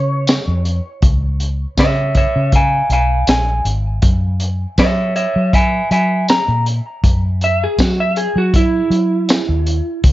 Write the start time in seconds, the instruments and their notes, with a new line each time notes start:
Already playing: fingered electric bass C#3, clean electric guitar C#5
0.27 snare, closed hi-hat, tambourine
0.48 fingered electric bass F2
0.65 closed hi-hat
1.02 fingered electric bass C#2, kick, closed hi-hat
1.40 closed hi-hat
1.77 fingered electric bass C#3, clean electric guitar C#5 E5, kick, snare, closed hi-hat, tambourine
2.15 clean electric guitar C#5 E5, kick, closed hi-hat
2.36 fingered electric bass C#3
2.52 clean electric guitar F5 G#5, kick, closed hi-hat
2.90 fingered electric bass B1, clean electric guitar F5 G#5, closed hi-hat
3.27 fingered electric bass A#1, clean electric guitar G#5, snare, closed hi-hat, tambourine
3.65 fingered electric bass G#1, closed hi-hat
4.02 fingered electric bass F#2, kick, closed hi-hat
4.40 closed hi-hat
4.78 fingered electric bass F#3, clean electric guitar C#5 E5, kick, snare, closed hi-hat, tambourine
5.16 clean electric guitar C#5 E5, closed hi-hat
5.36 fingered electric bass F#3
5.53 clean electric guitar E5 G#5, kick, closed hi-hat
5.91 fingered electric bass F#3, clean electric guitar E5 G#5, closed hi-hat
6.28 clean electric guitar A#5, snare, closed hi-hat, tambourine
6.48 fingered electric bass A#2
6.66 closed hi-hat
7.04 fingered electric bass F#2, kick, closed hi-hat
7.41 clean electric guitar E5, closed hi-hat
7.64 clean electric guitar G#4
7.78 fingered electric bass F#3, clean electric guitar F#4, kick, snare, closed hi-hat, tambourine
8.00 clean electric guitar E5
8.16 clean electric guitar G#4, closed hi-hat
8.36 fingered electric bass F#3, clean electric guitar F#4
8.54 clean electric guitar E4, kick, closed hi-hat
8.90 fingered electric bass F#3, closed hi-hat
9.29 snare, closed hi-hat, tambourine
9.49 fingered electric bass D#2
9.66 closed hi-hat
10.04 fingered electric bass C#2, kick, closed hi-hat